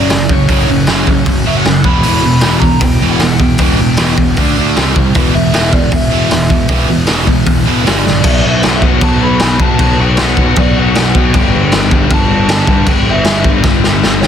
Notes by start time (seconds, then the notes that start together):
Already playing: F#2 C#3 F#3
0.10 F#1 F#2 C#3 D5, snare, open hi-hat
0.29 F#1 F#2 C#3 F#3 C#5, kick
0.49 F#1 F#2 C#3 F#3, kick, open hi-hat
0.68 F#1 F#2 C#3
0.87 F#1 F#2 C#3 F#3, snare, open hi-hat
1.07 F#1 F#2 C#3, kick
1.26 F#1 F#2 C#3, kick, open hi-hat
1.45 F#1 F#2 C#3 F#3 E5
1.57 F#5
1.65 F#1 F#2 C#3, snare, open hi-hat
1.84 E1 E2 B2 E3 B5, kick
2.03 E1 E2 B2 E3, open hi-hat
2.22 E1 E2 B2
2.41 E1 E2 B2 E3, snare, open hi-hat
2.60 E2 B2 A#5, kick
2.80 E1 E2 B2 G5, kick, open hi-hat
3.01 E1 E2 B2 E3
3.10 F#5
3.19 E1 E2 B2, snare, open hi-hat
3.39 E1 E2 B2 G5, kick
3.58 E1 E2 B2 E3, kick, open hi-hat
3.79 E1 E2 B2
3.97 E1 E2 B2 E3, snare, open hi-hat
4.18 E1 E2 B2, kick
4.36 D2 D3 A3 D4, kick, open hi-hat
4.58 D2 D3 A3 D4
4.76 C2 C3 G3 C4, snare, open hi-hat
4.96 C2 C3 G3, kick
5.14 E1 E2 B2 E3, kick, open hi-hat
5.35 E1 E2 B2 E5
5.53 E1 E2 B2 E3 E5, snare, open hi-hat
5.72 E2 B2 D5, kick
5.91 E1 E2 B2 E5, kick, open hi-hat
6.11 E1 E2 B2 E3
6.29 E1 E2 B2, snare, open hi-hat
6.48 E1 E2 B2, kick
6.68 E1 E2 B2 E3, kick, open hi-hat
6.89 E1 E2 B2
7.06 E1 E2 B2 E3, snare, open hi-hat
7.26 E1 E2 B2, kick
7.46 E1 E2 B2, kick, open hi-hat
7.65 E1 E2 B2 E3
7.83 G1 G2 D3 G3, snare, open hi-hat
8.04 A#1 G2 D3 D5, snare
8.22 B1 B2 F#3 B3, kick, crash
8.28 B3
8.42 B1 B2 F#3 B3 E5
8.62 B2 F#3 B3 F#5, snare, crash
8.66 B1
8.76 B2 E5
8.81 B1 F#3 B3 F#5, kick
9.00 B1 B2 F#3 B3 A5, kick, crash
9.20 B2 F#3 B3 B5
9.39 B1 B2 F#3 B3 B5, snare, crash
9.60 B2 F#3 B3 A5, kick
9.79 B1 B2 F#3 B3, kick, crash
9.98 B1 B2 F#3 B3
10.02 G5
10.17 B1 B2 F#3 B3, snare, crash
10.21 F#5
10.37 B1 B2 F#3 B3, kick
10.56 B1 B2 F#3 B3 D5, kick, crash
10.77 B2 F#3 B3 F#5
10.95 B1 B2 F#3 B3, snare, crash
11.15 B2 F#3 B3 G5, kick
11.33 G1 G2 D3 G3, kick, crash
11.53 G1 G2 D3 G3
11.72 G1 G2 D3 G3, snare, crash
11.91 G1 G2 D3 G3, kick
12.08 G1 G2 D3 G3, kick, crash
12.14 A5
12.29 G2 D3 G3
12.49 G1 G2 D3 G3, snare, crash
12.67 G2 D3 G3, kick
12.87 G1 G2 D3 G3 G5, kick, crash
13.06 G1 G2 D3 G3 E5
13.24 G1 G2 D3 G3, snare, crash
13.44 G1 G2 D3 G3, kick
13.64 G1 G2 D3 G3, kick, snare
13.84 G2 D3 G3, snare
14.03 G1 G2 D3 G3, snare
14.21 A1 A2 E3 C#5, snare